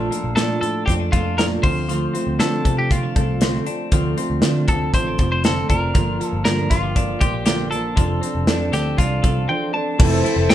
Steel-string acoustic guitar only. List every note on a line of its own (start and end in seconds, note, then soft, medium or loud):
0.00 0.11 A#2 medium
0.00 0.11 F3 medium
0.00 0.12 A3 medium
0.00 0.10 D4 medium
0.11 0.36 A3 soft
0.11 0.36 D4 soft
0.11 0.36 F4 soft
0.36 0.62 A#2 medium
0.36 0.62 F3 medium
0.36 0.62 A3 medium
0.36 0.61 D4 medium
0.36 0.60 F4 medium
0.61 0.87 A3 soft
0.61 0.88 D4 soft
0.61 0.87 F4 medium
0.88 1.13 F3 medium
0.88 1.14 A3 medium
0.88 1.13 D4 medium
0.88 1.11 F4 medium
1.13 1.37 A3 soft
1.13 1.37 D4 soft
1.13 1.38 F4 soft
1.37 1.63 A#2 medium
1.37 1.63 F3 medium
1.37 1.64 A3 medium
1.37 1.64 D4 medium
1.37 1.62 F4 medium
1.65 1.89 A3 soft
1.65 1.90 C4 soft
1.90 2.15 D3 medium
1.90 2.15 A3 medium
1.90 2.15 C4 medium
1.90 2.13 F4 medium
2.14 2.40 A3 soft
2.14 2.40 C4 soft
2.14 2.40 F4 soft
2.41 2.66 D3 medium
2.41 2.66 A3 medium
2.41 2.66 C4 medium
2.41 2.65 F4 medium
2.66 2.90 A3 soft
2.66 2.91 C4 soft
2.66 2.91 F4 soft
2.91 3.16 D3 soft
2.91 3.16 A3 medium
2.91 3.16 C4 medium
2.91 3.14 F4 medium
3.15 3.40 A3 soft
3.15 3.41 C4 soft
3.15 3.41 F4 medium
3.40 3.66 D3 medium
3.40 3.67 A3 medium
3.40 3.67 C4 medium
3.40 3.65 F4 medium
3.67 3.91 A3 soft
3.67 3.92 C4 soft
3.67 3.92 F4 medium
3.92 4.17 D3 medium
3.92 4.17 A3 medium
3.92 4.18 C4 medium
3.92 4.16 F4 medium
4.17 4.42 A3 soft
4.17 4.43 C4 soft
4.17 4.43 F4 medium
4.43 4.68 D3 medium
4.43 4.68 A3 medium
4.43 4.69 C4 medium
4.43 4.67 F4 medium
4.70 4.94 A3 soft
4.70 4.94 C4 soft
4.94 5.19 D3 medium
4.94 5.19 A3 soft
4.94 5.19 C4 medium
4.94 5.18 F4 medium
5.19 5.44 A3 soft
5.19 5.45 C4 soft
5.19 5.44 F4 soft
5.45 5.70 D3 medium
5.45 5.70 A3 medium
5.45 5.70 C4 medium
5.45 5.69 F4 medium
5.70 5.95 A3 soft
5.70 5.95 C4 soft
5.70 5.95 F4 medium
5.94 6.20 G2 medium
5.94 6.20 D3 medium
5.94 6.20 F3 medium
5.94 6.21 A#3 medium
5.94 6.19 F4 medium
6.20 6.45 F3 soft
6.20 6.46 A#3 soft
6.20 6.46 F4 medium
6.46 6.71 G2 medium
6.46 6.71 D3 medium
6.46 6.71 F3 medium
6.46 6.71 A#3 medium
6.46 6.69 F4 medium
6.71 6.96 F3 soft
6.71 6.97 A#3 soft
6.71 6.96 F4 soft
6.96 7.21 D3 soft
6.96 7.22 F3 medium
6.96 7.22 A#3 medium
6.96 7.21 F4 medium
7.22 7.46 F3 soft
7.22 7.47 A#3 soft
7.22 7.47 F4 soft
7.47 7.72 G2 medium
7.47 7.72 D3 medium
7.47 7.73 F3 medium
7.47 7.73 A#3 medium
7.47 7.72 F4 medium
7.73 7.96 F3 soft
7.73 7.98 A#3 soft
7.73 7.98 F4 soft
7.97 8.23 F3 medium
7.97 8.23 C4 medium
7.97 8.23 D4 medium
7.97 8.21 A4 medium
8.23 8.47 C4 soft
8.23 8.48 D4 soft
8.23 8.48 A4 soft
8.48 8.73 F3 medium
8.48 8.74 C4 medium
8.48 8.73 D4 medium
8.48 8.71 A4 medium
8.73 8.98 C4 soft
8.73 8.99 D4 soft
8.73 8.98 A4 medium
8.98 9.24 F3 medium
8.98 9.24 C4 medium
8.98 9.24 D4 medium
8.98 9.22 A4 medium
9.23 9.48 C4 soft
9.23 9.49 D4 soft
9.23 9.49 A4 soft
9.49 9.74 F3 medium
9.49 9.75 C4 medium
9.49 9.74 D4 medium
9.49 9.73 A4 medium
9.74 9.99 C4 soft
9.74 10.00 D4 soft
9.74 9.99 A4 medium
9.99 10.24 F3 medium
9.99 10.25 A3 medium
9.99 10.25 C4 medium
9.99 10.24 E4 medium
9.99 10.23 A4 medium
10.24 10.49 C4 soft
10.24 10.50 E4 medium
10.24 10.50 A4 medium
10.49 10.55 A3 medium
10.49 10.55 C4 medium
10.49 10.55 E4 medium
10.49 10.55 A4 medium